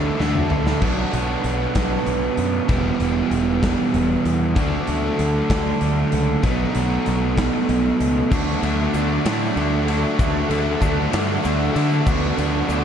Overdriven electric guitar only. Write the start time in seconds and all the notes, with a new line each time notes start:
Already playing: E3 A3 D4 A4
0.19 E3 A3 D4 A4
0.50 A3 D4 A4
0.81 B2 F#3 B3 D4 F#4
2.68 E3 G3 B3 E4
4.55 D3 F#3 A3 D4
6.42 B2 F#3 A3 D#4
8.31 D3 F#3 A3 D4
8.63 D3 F#3 A3 D4
8.93 D3 F#3 A3 D4
9.25 D3 F#3 A3 D4
9.56 D3 F#3 A3 D4
9.88 D3 F#3 A3 D4
10.18 D3 F#3 A3 D4
10.50 D3 F#3 A3 D4
10.80 D3 F#3 A3 D4
11.11 D3 F#3 A3 D4
11.43 D3 F#3 A3 D4
11.74 D3 F#3 A3 D4
12.06 D3 F#3 B3 D4
12.36 D3 F#3 B3 D4
12.68 D3 F#3 B3 D4